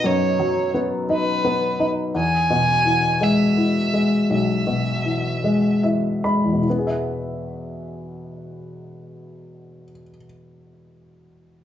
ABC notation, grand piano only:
X:1
M:6/8
L:1/8
Q:3/8=51
K:E
V:1 name="Grand piano" clef=bass
[F,,B,D] F, B, D B, D | E,, B,, E, G, E, G, | B,,, B,, E, G, [E,e] [G,b] | [E,,B,,E,B,Ge]6- |
[E,,B,,E,B,Ge]6 |]